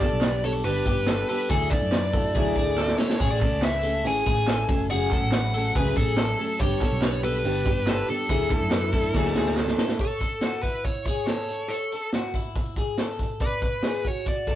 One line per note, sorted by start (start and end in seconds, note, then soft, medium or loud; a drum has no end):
0.00 0.21 G3 soft
0.00 0.22 B3 soft
0.00 0.23 D4 medium
0.00 0.22 G4 soft
0.00 0.22 A4 medium
0.00 0.45 D5 loud
0.00 kick medium
0.00 clap medium
0.00 hi-hat pedal medium
0.00 open hi-hat medium
0.12 0.62 B1 medium
0.21 0.43 G3 medium
0.21 0.43 B3 medium
0.21 0.43 D4 medium
0.21 0.42 G4 medium
0.21 0.44 B4 medium
0.21 snare loud
0.21 clap medium
0.21 hi-hat pedal medium
0.21 open hi-hat medium
0.43 0.64 G3 soft
0.43 0.65 B3 soft
0.43 0.65 D4 medium
0.43 0.65 G4 medium
0.43 0.65 A4 medium
0.43 0.51 C#5 medium
0.43 hi-hat pedal medium
0.43 open hi-hat medium
0.64 0.83 G1 loud
0.64 0.86 G2 medium
0.64 0.86 D3 medium
0.64 0.86 G3 medium
0.64 0.87 B3 medium
0.64 0.87 D4 medium
0.64 0.86 G4 medium
0.64 1.28 B4 medium
0.64 hi-hat pedal medium
0.64 open hi-hat medium
0.86 1.22 G1 medium
0.86 1.06 G3 soft
0.86 1.06 B3 medium
0.86 1.08 D4 medium
0.86 1.07 G4 medium
0.86 1.08 G4 soft
0.86 kick medium
0.86 hi-hat pedal medium
0.86 open hi-hat medium
1.07 1.29 G3 medium
1.07 1.29 B3 medium
1.07 1.29 D4 medium
1.07 1.28 G4 medium
1.07 1.28 A4 medium
1.07 snare medium
1.07 clap loud
1.07 hi-hat pedal medium
1.07 open hi-hat medium
1.29 1.50 G3 soft
1.29 1.51 B3 soft
1.29 1.50 D4 medium
1.29 1.50 G4 medium
1.29 1.50 A4 medium
1.29 1.50 B4 medium
1.29 hi-hat pedal medium
1.29 open hi-hat medium
1.50 1.77 D2 medium
1.50 1.71 D3 medium
1.50 1.72 F#3 medium
1.50 1.71 A3 medium
1.50 1.71 D4 medium
1.50 1.69 E4 medium
1.50 1.70 G#4 loud
1.50 1.72 A4 loud
1.50 kick loud
1.50 hi-hat pedal medium
1.50 open hi-hat medium
1.70 1.93 A3 soft
1.70 1.93 D4 soft
1.70 1.92 E4 medium
1.70 1.91 A4 medium
1.70 2.98 D5 medium
1.70 kick medium
1.70 clap medium
1.70 hi-hat pedal medium
1.70 open hi-hat medium
1.81 2.32 F#2 loud
1.92 2.14 F#3 medium
1.92 2.14 A3 medium
1.92 2.13 D4 medium
1.92 2.12 E4 medium
1.92 2.13 B4 medium
1.92 snare loud
1.92 clap medium
1.92 hi-hat pedal medium
1.92 open hi-hat medium
2.12 2.35 A3 soft
2.12 2.35 D4 soft
2.12 2.35 E4 medium
2.12 2.35 F#4 medium
2.12 2.34 A4 medium
2.12 kick loud
2.12 hi-hat pedal medium
2.12 open hi-hat medium
2.35 2.53 D2 medium
2.35 2.56 D3 loud
2.35 2.57 F#3 loud
2.35 2.57 A3 loud
2.35 2.56 D4 medium
2.35 2.57 E4 loud
2.35 2.55 E4 loud
2.35 2.56 G#4 medium
2.35 kick loud
2.35 hi-hat pedal medium
2.35 open hi-hat medium
2.56 2.92 D2 medium
2.56 2.78 A3 soft
2.56 2.78 D4 medium
2.56 2.78 E4 medium
2.56 2.77 G#4 medium
2.56 2.86 A4 medium
2.56 kick medium
2.56 hi-hat pedal medium
2.56 open hi-hat medium
2.77 2.99 F#3 medium
2.77 2.99 A3 medium
2.77 2.99 D4 medium
2.77 2.97 E4 medium
2.77 2.98 A4 medium
2.77 snare soft
2.77 clap loud
2.88 snare medium
2.98 3.19 A3 soft
2.98 3.20 D4 medium
2.98 3.20 E4 medium
2.98 3.20 A4 medium
2.98 3.31 C#5 medium
2.98 snare medium
3.10 snare medium
3.19 3.47 A1 loud
3.19 3.41 A2 medium
3.19 3.41 E3 medium
3.19 3.41 A3 medium
3.19 3.39 C#4 medium
3.19 3.38 G#4 medium
3.19 3.41 G#4 loud
3.19 kick loud
3.19 crash medium
3.31 3.64 D5 loud
3.39 3.61 A3 soft
3.39 3.61 C#4 medium
3.39 3.62 G#4 soft
3.39 3.62 A4 medium
3.39 kick medium
3.39 clap medium
3.39 hi-hat pedal medium
3.39 open hi-hat medium
3.52 4.05 C#2 medium
3.61 3.83 E3 medium
3.61 3.84 A3 medium
3.61 3.83 C#4 medium
3.61 3.82 G#4 medium
3.61 3.83 B4 medium
3.61 4.07 E5 loud
3.61 snare loud
3.61 clap medium
3.61 hi-hat pedal medium
3.61 open hi-hat medium
3.83 4.03 A3 soft
3.83 4.03 C#4 medium
3.83 4.03 G#4 medium
3.83 4.05 A4 medium
3.83 hi-hat pedal medium
3.83 open hi-hat medium
4.03 4.23 A1 loud
4.03 4.25 A2 medium
4.03 4.26 E3 medium
4.03 4.25 A3 medium
4.03 4.24 C#4 medium
4.03 4.24 G#4 medium
4.03 4.25 G#4 medium
4.03 4.87 G#5 loud
4.03 hi-hat pedal medium
4.03 open hi-hat medium
4.25 4.63 A1 medium
4.25 4.46 A3 soft
4.25 4.46 C#4 soft
4.25 4.47 G#4 soft
4.25 4.47 G#4 medium
4.25 kick medium
4.25 hi-hat pedal medium
4.25 open hi-hat medium
4.46 4.68 E3 medium
4.46 4.68 A3 medium
4.46 4.69 C#4 medium
4.46 4.68 G#4 medium
4.46 4.68 A4 loud
4.46 snare medium
4.46 clap loud
4.46 hi-hat pedal medium
4.46 open hi-hat medium
4.69 5.14 F#1 loud
4.69 4.89 F#3 medium
4.69 4.89 A3 medium
4.69 4.90 C#4 medium
4.69 4.90 G#4 medium
4.69 4.90 A4 medium
4.69 kick loud
4.69 hi-hat pedal medium
4.69 open hi-hat medium
4.90 5.11 F#2 medium
4.90 5.11 C#3 medium
4.90 5.11 F#3 medium
4.90 5.11 A3 medium
4.90 5.12 C#4 medium
4.90 5.11 G#4 loud
4.90 5.32 F#5 loud
4.90 hi-hat pedal medium
4.90 open hi-hat medium
5.11 5.32 F#3 soft
5.11 5.33 A3 soft
5.11 5.33 C#4 medium
5.11 5.33 G#4 medium
5.11 5.32 A4 medium
5.11 kick loud
5.11 clap medium
5.11 hi-hat pedal medium
5.11 open hi-hat medium
5.22 5.72 A1 medium
5.31 5.54 F#3 medium
5.31 5.54 A3 medium
5.31 5.54 C#4 medium
5.31 5.53 G#4 medium
5.31 5.54 B4 medium
5.31 5.77 F#5 loud
5.31 snare loud
5.31 clap medium
5.31 hi-hat pedal medium
5.31 open hi-hat medium
5.53 5.76 F#3 soft
5.53 5.76 A3 soft
5.53 5.76 C#4 medium
5.53 5.75 G#4 medium
5.53 5.75 A4 medium
5.53 hi-hat pedal medium
5.53 open hi-hat medium
5.75 5.93 C#2 medium
5.75 5.96 F#2 medium
5.75 5.97 C#3 medium
5.75 5.97 F#3 medium
5.75 5.97 A3 medium
5.75 5.97 C#4 medium
5.75 5.96 G#4 medium
5.75 5.96 B4 medium
5.75 kick loud
5.75 hi-hat pedal medium
5.75 open hi-hat medium
5.96 6.32 A1 medium
5.96 6.16 F#3 soft
5.96 6.17 A3 soft
5.96 6.18 C#4 soft
5.96 6.18 G#4 medium
5.96 6.18 G#4 soft
5.96 6.62 A4 medium
5.96 kick loud
5.96 hi-hat pedal medium
5.96 open hi-hat medium
6.17 6.38 F#3 medium
6.17 6.38 A3 medium
6.17 6.38 C#4 medium
6.17 6.38 G#4 medium
6.17 6.38 A4 medium
6.17 snare loud
6.17 clap loud
6.17 hi-hat pedal medium
6.17 open hi-hat medium
6.39 6.60 F#3 soft
6.39 6.60 A3 medium
6.39 6.60 C#4 soft
6.39 6.60 G#4 medium
6.39 6.60 A4 medium
6.39 hi-hat pedal medium
6.39 open hi-hat medium
6.60 6.87 G1 loud
6.60 6.81 G2 medium
6.60 6.81 D3 medium
6.60 6.81 G3 medium
6.60 6.80 B3 medium
6.60 6.79 D4 medium
6.60 6.81 G4 loud
6.60 6.79 G4 medium
6.60 7.25 C#5 loud
6.60 kick loud
6.60 hi-hat pedal medium
6.60 open hi-hat medium
6.80 7.01 G3 medium
6.80 7.01 B3 soft
6.80 7.02 D4 soft
6.80 7.02 G4 medium
6.80 7.03 A4 medium
6.80 kick medium
6.80 clap medium
6.80 hi-hat pedal medium
6.80 open hi-hat medium
6.91 7.42 B1 medium
7.02 7.23 G3 medium
7.02 7.22 B3 medium
7.02 7.22 D4 medium
7.02 7.21 G4 medium
7.02 7.24 B4 medium
7.02 snare loud
7.02 clap medium
7.02 hi-hat pedal medium
7.02 open hi-hat medium
7.22 7.43 G3 medium
7.22 7.43 B3 medium
7.22 7.44 D4 medium
7.22 7.44 G4 medium
7.22 7.45 A4 medium
7.22 8.10 B4 medium
7.22 hi-hat pedal medium
7.22 open hi-hat medium
7.44 7.62 G1 loud
7.44 7.66 G2 medium
7.44 7.66 D3 medium
7.44 7.66 G3 medium
7.44 7.65 B3 medium
7.44 7.65 D4 medium
7.44 7.64 G4 medium
7.44 7.66 G4 medium
7.44 hi-hat pedal medium
7.44 open hi-hat medium
7.65 8.02 G1 medium
7.65 7.85 G3 soft
7.65 7.86 B3 soft
7.65 7.86 D4 medium
7.65 7.87 G4 medium
7.65 7.88 G4 medium
7.65 kick loud
7.65 hi-hat pedal medium
7.65 open hi-hat medium
7.86 8.08 G3 medium
7.86 8.08 B3 medium
7.86 8.08 D4 medium
7.86 8.07 G4 medium
7.86 8.08 A4 loud
7.86 snare medium
7.86 clap loud
7.86 hi-hat pedal medium
7.86 open hi-hat medium
8.08 8.29 G3 soft
8.08 8.29 B3 medium
8.08 8.29 D4 medium
8.08 8.29 G4 medium
8.08 8.29 A4 medium
8.08 9.54 A4 medium
8.08 hi-hat pedal medium
8.08 open hi-hat medium
8.29 8.56 D2 loud
8.29 8.50 D3 medium
8.29 8.51 F#3 medium
8.29 8.51 A3 medium
8.29 8.50 D4 medium
8.29 8.49 E4 medium
8.29 8.51 G#4 loud
8.29 kick loud
8.29 hi-hat pedal medium
8.29 open hi-hat medium
8.50 8.71 A3 soft
8.50 8.73 D4 medium
8.50 8.71 D4 medium
8.50 8.71 E4 medium
8.50 8.72 A4 medium
8.50 kick medium
8.50 clap medium
8.50 hi-hat pedal medium
8.50 open hi-hat medium
8.61 9.12 F#2 medium
8.71 8.93 F#3 medium
8.71 8.93 A3 medium
8.71 8.92 D4 medium
8.71 8.91 E4 medium
8.71 9.12 E4 medium
8.71 8.92 B4 medium
8.71 snare loud
8.71 clap medium
8.71 hi-hat pedal medium
8.71 open hi-hat medium
8.92 9.13 A3 medium
8.92 9.14 D4 medium
8.92 9.14 E4 medium
8.92 9.14 A4 medium
8.92 kick medium
8.92 hi-hat pedal medium
8.92 open hi-hat medium
9.14 9.32 D2 loud
9.14 9.35 D3 loud
9.14 9.36 F#3 loud
9.14 9.36 A3 medium
9.14 9.36 D4 medium
9.14 9.35 E4 loud
9.14 9.58 F#4 loud
9.14 9.34 G#4 medium
9.14 kick loud
9.14 snare medium
9.25 snare soft
9.35 9.72 D2 medium
9.35 9.56 A3 medium
9.35 9.56 D4 soft
9.35 9.57 E4 medium
9.35 9.57 G#4 medium
9.35 snare medium
9.46 snare medium
9.56 9.78 F#3 medium
9.56 9.78 A3 medium
9.56 9.78 D4 medium
9.56 9.76 E4 medium
9.56 9.97 A4 loud
9.56 9.78 A4 loud
9.56 snare medium
9.56 clap loud
9.68 snare medium
9.78 10.00 A3 medium
9.78 10.00 D4 medium
9.78 9.99 E4 medium
9.78 9.99 A4 medium
9.78 snare loud
9.89 snare medium
9.99 10.62 A4 medium
9.99 10.21 C#5 medium
9.99 kick medium
9.99 closed hi-hat medium
10.21 10.42 A4 medium
10.21 kick medium
10.21 closed hi-hat medium
10.41 10.64 F#4 medium
10.41 snare medium
10.41 closed hi-hat medium
10.63 11.04 E4 medium
10.63 10.85 B4 medium
10.63 kick medium
10.63 closed hi-hat medium
10.85 11.05 C#5 medium
10.85 kick medium
10.85 closed hi-hat medium
11.06 11.28 G#4 medium
11.06 11.26 C#5 medium
11.06 kick medium
11.06 closed hi-hat medium
11.27 11.68 A4 medium
11.27 11.71 C#5 medium
11.27 snare medium
11.27 closed hi-hat medium
11.49 closed hi-hat medium
11.68 12.09 A4 medium
11.68 11.92 C#5 medium
11.68 closed hi-hat medium
11.92 12.13 A4 medium
11.92 closed hi-hat medium
12.13 12.35 F#4 medium
12.13 snare medium
12.13 closed hi-hat medium
12.34 12.75 E4 medium
12.34 kick medium
12.34 closed hi-hat medium
12.56 kick medium
12.56 closed hi-hat medium
12.76 12.99 G#4 medium
12.76 kick medium
12.76 closed hi-hat medium
12.98 13.39 A4 medium
12.98 snare medium
12.98 closed hi-hat medium
13.19 kick medium
13.19 closed hi-hat medium
13.40 14.07 B4 medium
13.40 13.63 D5 medium
13.40 kick medium
13.40 closed hi-hat medium
13.62 13.84 B4 medium
13.62 kick medium
13.62 closed hi-hat medium
13.83 14.05 G#4 medium
13.83 snare medium
13.83 closed hi-hat medium
14.05 14.45 F#4 medium
14.05 14.26 C#5 medium
14.05 kick medium
14.05 closed hi-hat medium
14.26 14.55 D5 medium
14.26 kick medium
14.26 closed hi-hat medium
14.47 14.55 A4 medium
14.47 kick medium
14.47 closed hi-hat medium